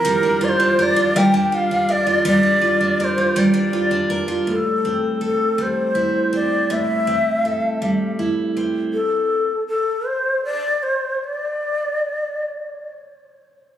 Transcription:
0.00 1.19 F3 medium
0.00 0.13 C4 medium
0.00 0.12 E4 medium
0.00 0.45 A#4 loud
0.05 1.15 G3 medium
0.05 0.78 A#4 medium
0.23 0.58 D4 medium
0.41 0.95 F4 medium
0.41 0.50 D5 medium
0.49 0.83 C5 medium
0.60 1.33 D4 medium
0.79 1.15 A#4 medium
0.79 1.19 D5 loud
0.96 1.51 F4 medium
1.16 2.25 G3 medium
1.16 1.87 A#4 medium
1.16 1.56 G5 loud
1.34 1.70 D4 medium
1.52 2.05 F4 medium
1.52 1.93 F5 loud
1.71 2.42 D4 medium
1.89 2.24 A#4 medium
1.89 2.26 D5 loud
2.07 2.60 F4 medium
2.25 3.36 G3 medium
2.25 2.99 A#4 medium
2.25 3.00 D5 loud
2.43 2.79 D4 medium
2.62 3.17 F4 medium
2.81 3.52 D4 medium
3.00 3.35 A#4 medium
3.00 3.05 D5 medium
3.04 3.40 C5 medium
3.18 3.72 F4 medium
3.36 5.24 G3 medium
3.36 4.09 A#4 medium
3.36 4.21 D5 medium
3.54 3.90 D4 medium
3.73 4.27 F4 medium
3.91 4.54 D4 medium
4.10 4.55 A#4 medium
4.28 4.55 F4 medium
4.47 6.69 A2 medium
4.47 5.19 A4 medium
4.85 6.32 C4 soft
5.21 7.44 A4 soft
5.21 5.63 A4 medium
5.58 7.80 G3 medium
5.58 6.34 C5 medium
5.95 8.17 E4 soft
6.33 7.07 C4 soft
6.33 6.74 D5 medium
6.70 8.92 A2 medium
6.70 8.19 E5 medium
7.07 8.56 C4 soft
7.45 9.50 A4 soft
7.82 9.00 G3 medium
8.19 9.00 E4 soft
8.57 9.50 C4 soft
8.93 9.63 A4 medium
9.68 10.08 A4 medium
10.06 10.44 C5 medium
10.45 10.84 D5 medium
10.83 11.25 C5 medium
11.24 12.92 D5 medium

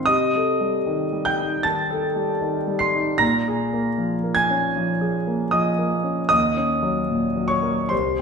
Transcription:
0.00 0.10 D#3 soft
0.00 0.11 G#3 soft
0.00 0.11 C4 soft
0.00 0.11 C5 soft
0.00 0.10 F5 medium
0.00 0.10 C6 medium
0.06 1.61 C3 soft
0.06 1.22 D#5 medium
0.06 1.26 D#6 medium
0.35 0.78 A4 soft
0.61 1.03 G3 soft
0.87 1.29 D#3 soft
1.13 1.55 G3 soft
1.25 1.62 G5 medium
1.25 1.64 G6 medium
1.41 1.81 D#4 soft
1.63 2.06 D#3 soft
1.63 2.77 A5 medium
1.63 2.80 A6 medium
1.91 2.31 A4 soft
2.16 2.57 G3 soft
2.41 2.83 D#3 soft
2.67 3.10 G3 soft
2.79 3.18 C6 medium
2.79 3.20 C7 medium
2.95 3.21 D#4 soft
3.18 4.71 A#2 medium
3.18 4.32 A#5 medium
3.18 4.36 A#6 loud
3.48 3.89 G#4 soft
3.73 4.14 A#3 soft
3.98 4.40 F3 soft
4.24 4.65 A#3 soft
4.35 5.48 G#5 medium
4.35 5.51 G#6 medium
4.50 4.91 C#4 soft
4.76 5.16 F3 soft
5.01 5.42 G#4 soft
5.27 5.68 A#3 soft
5.51 5.94 F3 soft
5.51 6.27 D#5 medium
5.51 6.27 D#6 medium
5.79 6.20 A#3 soft
6.04 6.30 C#4 soft
6.29 7.88 D#2 medium
6.29 7.46 D#5 medium
6.29 7.49 D#6 medium
6.57 6.99 C#4 soft
6.83 7.26 F#3 soft
7.11 7.53 A#2 soft
7.37 7.81 F#3 soft
7.48 7.88 C#5 medium
7.48 7.90 C#6 medium
7.63 7.91 A#3 soft
7.89 8.21 C2 medium
7.89 8.21 C5 medium
7.89 8.21 C6 medium

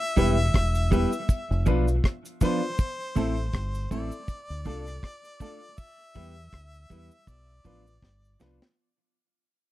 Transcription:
0.00 1.67 E5 loud
0.00 closed hi-hat medium
0.16 0.49 E1 loud
0.16 0.35 G3 medium
0.16 0.36 B3 medium
0.16 0.35 E4 loud
0.16 0.36 E4 medium
0.16 0.35 G4 medium
0.16 0.36 G4 medium
0.16 0.35 B4 loud
0.16 kick loud
0.16 closed hi-hat medium
0.16 cabasa medium
0.38 closed hi-hat medium
0.54 1.05 E1 loud
0.54 kick loud
0.54 cross-stick loud
0.54 closed hi-hat loud
0.75 closed hi-hat medium
0.75 cabasa medium
0.91 1.10 G3 medium
0.91 1.10 B3 loud
0.91 1.09 E4 medium
0.91 1.11 E4 loud
0.91 1.10 G4 medium
0.91 1.11 G4 loud
0.91 1.10 B4 loud
0.91 kick medium
0.91 closed hi-hat medium
0.91 cabasa medium
1.12 closed hi-hat soft
1.12 cabasa medium
1.29 kick loud
1.29 closed hi-hat medium
1.29 cabasa medium
1.51 1.65 F1 loud
1.51 closed hi-hat medium
1.66 1.99 B1 medium
1.66 1.85 F3 medium
1.66 1.85 B3 medium
1.66 1.84 D4 loud
1.66 1.85 D4 loud
1.66 1.85 F4 medium
1.66 1.86 F4 loud
1.66 1.85 B4 loud
1.66 kick loud
1.66 closed hi-hat medium
1.66 cabasa medium
1.88 1.94 F4 soft
1.88 1.94 B4 soft
1.88 closed hi-hat soft
1.88 cabasa medium
2.04 kick loud
2.04 cross-stick loud
2.04 closed hi-hat medium
2.25 closed hi-hat medium
2.25 cabasa medium
2.41 2.60 F3 medium
2.41 2.60 B3 medium
2.41 2.59 D4 medium
2.41 2.60 D4 medium
2.41 2.60 F4 medium
2.41 2.61 F4 medium
2.41 2.60 B4 loud
2.41 3.88 C5 loud
2.41 kick medium
2.41 closed hi-hat medium
2.41 cabasa medium
2.63 closed hi-hat soft
2.78 kick loud
2.78 closed hi-hat medium
2.78 cabasa medium
3.00 closed hi-hat medium
3.15 3.49 A1 loud
3.15 3.34 A3 medium
3.15 3.34 C4 loud
3.15 3.35 C4 medium
3.15 3.34 E4 medium
3.15 3.35 E4 medium
3.15 3.35 A4 loud
3.15 3.35 A4 medium
3.15 kick loud
3.15 closed hi-hat medium
3.15 cabasa medium
3.37 closed hi-hat medium
3.53 3.86 G1 medium
3.53 kick loud
3.53 cross-stick loud
3.53 closed hi-hat medium
3.75 closed hi-hat medium
3.75 cabasa medium
3.91 4.09 A1 loud
3.91 4.10 A3 medium
3.91 4.09 C4 loud
3.91 4.10 C4 loud
3.91 4.09 E4 medium
3.91 4.10 E4 medium
3.91 4.10 A4 loud
3.91 5.80 D5 loud
3.91 kick medium
3.91 closed hi-hat medium
3.91 cabasa medium
4.11 closed hi-hat medium
4.11 cabasa medium
4.28 kick loud
4.28 closed hi-hat medium
4.28 cabasa medium
4.50 4.64 D2 medium
4.50 closed hi-hat medium
4.65 4.98 C2 medium
4.65 4.84 A3 medium
4.65 4.84 D4 loud
4.65 4.84 D4 medium
4.65 4.84 F4 medium
4.65 4.85 F4 medium
4.65 4.84 A4 loud
4.65 4.85 A4 loud
4.65 kick medium
4.65 closed hi-hat medium
4.65 cabasa medium
4.87 4.94 F4 soft
4.87 4.94 A4 soft
4.87 cross-stick medium
4.87 closed hi-hat soft
4.87 cabasa medium
5.03 kick loud
5.03 cross-stick loud
5.03 closed hi-hat medium
5.25 closed hi-hat medium
5.25 cabasa medium
5.40 5.59 A3 medium
5.40 5.59 D4 medium
5.40 5.59 F4 medium
5.40 5.60 F4 medium
5.40 5.59 A4 loud
5.40 5.60 A4 medium
5.40 kick medium
5.40 closed hi-hat medium
5.40 cabasa medium
5.62 closed hi-hat medium
5.78 7.31 E5 loud
5.78 kick loud
5.78 closed hi-hat medium
5.78 cabasa medium
6.00 closed hi-hat medium
6.14 6.48 E2 loud
6.14 6.34 G3 medium
6.14 6.34 B3 loud
6.14 6.33 E4 medium
6.14 6.35 E4 medium
6.14 6.34 G4 medium
6.14 6.35 G4 loud
6.14 6.34 B4 loud
6.14 kick loud
6.14 closed hi-hat medium
6.14 cabasa medium
6.36 closed hi-hat medium
6.52 6.85 D2 loud
6.52 kick loud
6.52 cross-stick loud
6.52 closed hi-hat medium
6.74 closed hi-hat medium
6.74 cabasa medium
6.90 7.09 E2 loud
6.90 7.09 G3 medium
6.90 7.09 B3 medium
6.90 7.08 E4 medium
6.90 7.09 E4 loud
6.90 7.09 G4 medium
6.90 7.10 G4 loud
6.90 7.09 B4 loud
6.90 kick medium
6.90 closed hi-hat medium
6.90 cabasa medium
7.10 closed hi-hat soft
7.10 cabasa medium
7.27 7.60 B1 loud
7.27 8.41 D5 loud
7.27 kick loud
7.27 closed hi-hat medium
7.27 cabasa medium
7.50 closed hi-hat medium
7.64 7.97 A1 medium
7.64 7.83 F3 medium
7.64 7.84 B3 medium
7.64 7.83 D4 loud
7.64 7.84 D4 medium
7.64 7.83 F4 medium
7.64 7.84 F4 loud
7.64 7.84 B4 loud
7.64 kick loud
7.64 closed hi-hat medium
7.64 cabasa medium
7.87 7.93 F4 soft
7.87 7.93 B4 soft
7.87 closed hi-hat soft
7.87 cabasa medium
8.02 8.35 G1 medium
8.02 kick loud
8.02 snare medium
8.25 cabasa medium
8.40 8.59 C2 medium
8.40 8.59 F3 medium
8.40 8.59 B3 medium
8.40 8.58 D4 medium
8.40 8.59 D4 medium
8.40 8.58 F4 medium
8.40 8.59 F4 medium
8.40 8.59 B4 loud
8.40 snare medium
8.40 cabasa medium
8.62 snare loud

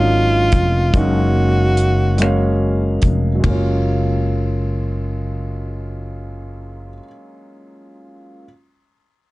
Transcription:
0.00 0.49 G#1 medium
0.00 0.92 F#3 medium
0.00 0.93 G#3 medium
0.00 0.95 A#3 medium
0.00 0.96 C#4 medium
0.00 3.46 D4 medium
0.00 0.81 D#4 medium
0.00 1.00 F4 loud
0.00 3.46 F4 loud
0.52 0.91 F1 medium
0.52 kick medium
0.52 closed hi-hat medium
0.92 2.99 F#1 medium
0.92 2.01 F#3 medium
0.92 2.02 G#3 medium
0.92 2.02 A#3 medium
0.92 2.03 C#4 medium
0.92 kick loud
0.92 closed hi-hat medium
0.97 2.04 D#4 medium
0.97 2.63 F#4 medium
1.77 closed hi-hat medium
2.17 3.26 F#3 medium
2.17 3.27 G#3 medium
2.17 3.27 A#3 medium
2.17 3.28 C#4 medium
2.17 closed hi-hat medium
2.22 3.28 F5 medium
2.22 finger snap medium
3.02 3.40 F1 medium
3.02 kick medium
3.02 closed hi-hat medium
3.35 6.89 F#3 medium
3.40 6.93 G#3 medium
3.44 6.99 F#1 medium
3.44 6.98 A#3 medium
3.44 kick medium
3.44 floor tom medium
3.44 ride bell medium
3.49 7.02 C#4 medium
3.53 7.07 F4 medium

